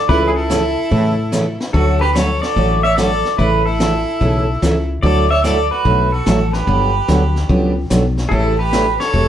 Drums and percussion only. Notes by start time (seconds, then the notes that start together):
0.09 brush sweep, kick
0.50 snare, hi-hat pedal
0.91 brush sweep, kick
1.32 snare, hi-hat pedal
1.60 snare
1.74 brush sweep, kick
2.15 snare, hi-hat pedal
2.43 snare
2.56 brush sweep, kick
2.97 snare, hi-hat pedal
3.25 snare
3.39 brush sweep, kick
3.80 snare, hi-hat pedal
4.21 brush sweep, kick
4.62 snare, hi-hat pedal
5.03 brush sweep, kick
5.44 snare, hi-hat pedal
5.85 brush sweep, kick
6.26 snare, hi-hat pedal
6.53 snare
6.67 brush sweep, kick
7.08 snare, hi-hat pedal
7.36 snare
7.49 brush sweep, kick
7.90 snare, hi-hat pedal
8.18 snare
8.31 brush sweep, kick
8.73 snare, hi-hat pedal
9.00 snare
9.14 brush sweep, kick